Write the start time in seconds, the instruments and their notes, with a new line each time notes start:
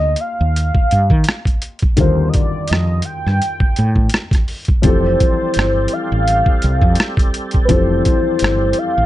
Already playing: fretless electric bass D2, grand piano A#3 D#4 F4 G4, soft synth lead D#5
0.16 closed hi-hat
0.20 soft synth lead F5
0.41 fretless electric bass D#2
0.56 closed hi-hat
0.75 kick
0.91 fretless electric bass G2, closed hi-hat
1.10 fretless electric bass D#3, kick
1.24 closed hi-hat
1.29 cross-stick
1.45 kick, closed hi-hat
1.62 closed hi-hat
1.79 kick, closed hi-hat
1.97 fretless electric bass D#2, grand piano D3 D#3 G3 F4, soft synth lead C5, kick, closed hi-hat
2.01 grand piano A#4
2.29 soft synth lead D#5
2.34 soft synth lead D5, kick, closed hi-hat
2.68 fretless electric bass F2, soft synth lead D#5, closed hi-hat
2.73 cross-stick
3.02 soft synth lead G5, closed hi-hat
3.26 fretless electric bass G2, cross-stick
3.42 closed hi-hat
3.60 muted fretless electric bass stroke, kick
3.76 fretless electric bass A2, closed hi-hat
3.96 kick
4.09 closed hi-hat
4.14 cross-stick
4.31 kick, cross-stick, closed hi-hat
4.48 open hi-hat
4.65 kick, closed hi-hat
4.82 fretless electric bass F1, grand piano E3 F3 C4 G4, tonewheel organ G3 C4 G4 A4, soft synth lead C5, kick, closed hi-hat
4.87 grand piano A4
5.20 kick, closed hi-hat
5.54 fretless electric bass G1, closed hi-hat
5.59 cross-stick
5.88 closed hi-hat
5.93 soft synth lead F5
6.12 fretless electric bass A1
6.28 closed hi-hat
6.46 kick
6.62 fretless electric bass C2, closed hi-hat
6.82 fretless electric bass F2, kick
6.95 closed hi-hat
7.00 cross-stick
7.17 kick, closed hi-hat
7.34 closed hi-hat
7.51 kick, closed hi-hat
7.65 grand piano F3, soft synth lead B4, closed hi-hat
7.69 fretless electric bass F1, grand piano E3 C4 G4 A4, soft synth lead C5, kick
8.05 kick, closed hi-hat
8.39 fretless electric bass G1, closed hi-hat
8.44 cross-stick
8.73 closed hi-hat
8.78 soft synth lead F5
8.98 fretless electric bass A1